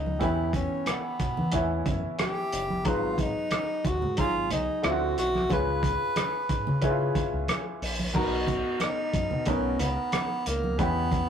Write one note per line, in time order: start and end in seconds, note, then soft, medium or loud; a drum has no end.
0.00 0.21 C#2 medium
0.00 0.23 B2 medium
0.00 0.20 B3 medium
0.00 0.21 C#4 soft
0.00 0.23 D#4 medium
0.00 0.23 C#5 medium
0.06 high conga medium
0.19 0.66 E2 medium
0.19 1.19 E3 medium
0.19 1.19 B3 medium
0.19 1.20 C#4 medium
0.19 0.53 E4 medium
0.19 1.20 G4 medium
0.19 kick loud
0.19 closed hi-hat medium
0.19 muted conga soft
0.53 0.91 C#4 medium
0.53 kick medium
0.53 closed hi-hat medium
0.53 muted conga soft
0.86 1.94 B3 medium
0.86 cross-stick medium
0.86 closed hi-hat medium
0.86 high conga medium
1.20 1.36 B2 medium
1.20 kick medium
1.20 closed hi-hat medium
1.37 1.52 E3 medium
1.37 low conga medium
1.52 1.83 E2 medium
1.52 2.52 E3 medium
1.52 2.52 B3 medium
1.52 2.52 C#4 medium
1.52 2.53 E4 medium
1.52 kick medium
1.52 closed hi-hat medium
1.86 2.02 F#2 medium
1.86 kick medium
1.86 closed hi-hat medium
1.86 muted conga soft
1.86 low conga medium
2.19 2.89 G4 medium
2.19 cross-stick loud
2.19 closed hi-hat medium
2.19 high conga medium
2.53 2.86 F#1 medium
2.53 closed hi-hat medium
2.70 high conga medium
2.84 3.31 G#1 medium
2.84 3.85 F#3 medium
2.84 3.84 G#3 medium
2.84 3.84 D#4 medium
2.84 3.22 F4 medium
2.84 3.85 B4 medium
2.84 kick loud
2.84 closed hi-hat medium
2.84 muted conga soft
3.18 3.88 D#4 medium
3.18 kick medium
3.18 closed hi-hat medium
3.18 muted conga soft
3.51 cross-stick medium
3.51 closed hi-hat medium
3.51 high conga medium
3.85 4.01 D#2 medium
3.85 4.19 F#4 medium
3.85 kick medium
3.85 closed hi-hat medium
4.02 4.17 G#2 medium
4.02 low conga medium
4.17 4.48 G#1 medium
4.17 4.85 F#3 medium
4.17 4.84 G#3 medium
4.17 4.84 D#4 medium
4.17 4.50 F4 medium
4.17 4.85 G#4 medium
4.17 kick medium
4.17 closed hi-hat medium
4.50 4.67 B1 medium
4.50 4.88 D#4 medium
4.50 closed hi-hat medium
4.50 muted conga soft
4.50 low conga medium
4.82 5.14 D2 medium
4.82 5.37 D3 medium
4.82 5.38 C4 medium
4.82 5.38 E4 medium
4.82 4.92 F4 medium
4.82 cross-stick loud
4.82 closed hi-hat medium
4.82 high conga medium
4.86 5.18 F#4 medium
4.91 5.42 F#4 medium
5.18 5.47 B1 medium
5.18 5.49 F#4 medium
5.18 closed hi-hat medium
5.35 cross-stick soft
5.35 high conga medium
5.49 5.96 C#2 medium
5.49 6.49 C#3 medium
5.49 6.49 C#4 medium
5.49 6.49 F4 medium
5.49 6.50 B4 medium
5.49 7.46 B4 medium
5.49 kick loud
5.49 closed hi-hat medium
5.49 muted conga soft
5.83 kick medium
5.83 closed hi-hat medium
5.83 muted conga soft
6.16 cross-stick medium
6.16 closed hi-hat medium
6.16 high conga medium
6.49 6.65 G#2 medium
6.49 kick medium
6.49 closed hi-hat medium
6.67 7.10 C#3 medium
6.67 low conga medium
6.81 7.81 C#3 medium
6.81 7.81 C#4 medium
6.81 6.90 E4 medium
6.81 7.82 B4 medium
6.81 kick medium
6.81 closed hi-hat medium
6.89 7.85 F4 medium
7.15 kick medium
7.15 closed hi-hat medium
7.15 low conga medium
7.33 7.47 C#2 medium
7.48 cross-stick loud
7.48 closed hi-hat medium
7.48 high conga medium
7.82 8.11 A#1 medium
7.82 open hi-hat medium
7.99 high conga medium
8.14 8.60 B1 medium
8.14 9.13 B2 medium
8.14 9.13 B3 medium
8.14 9.14 D#4 medium
8.14 8.78 F#4 medium
8.14 9.14 A#4 medium
8.14 kick loud
8.14 crash medium
8.14 muted conga soft
8.47 kick medium
8.47 closed hi-hat medium
8.47 muted conga soft
8.80 9.50 D#4 medium
8.80 cross-stick medium
8.80 closed hi-hat medium
8.80 high conga medium
9.13 9.30 F#2 medium
9.13 kick medium
9.13 closed hi-hat medium
9.31 9.45 B2 medium
9.31 low conga medium
9.46 9.76 B1 medium
9.46 10.45 B2 medium
9.46 10.46 B3 medium
9.46 9.82 C#4 medium
9.46 10.46 D#4 medium
9.46 10.46 A#4 medium
9.46 kick medium
9.46 closed hi-hat medium
9.79 9.96 C#2 medium
9.79 10.49 B3 medium
9.79 closed hi-hat medium
9.79 low conga medium
10.12 cross-stick loud
10.12 closed hi-hat medium
10.12 high conga medium
10.46 10.79 C#2 medium
10.46 10.80 A#3 medium
10.46 closed hi-hat medium
10.64 high conga medium
10.78 11.24 E2 medium
10.78 11.29 E3 medium
10.78 11.29 B3 medium
10.78 11.29 C#4 medium
10.78 11.29 G4 medium
10.78 kick loud
10.78 closed hi-hat medium
10.78 muted conga soft
11.11 kick medium
11.11 closed hi-hat medium
11.11 muted conga soft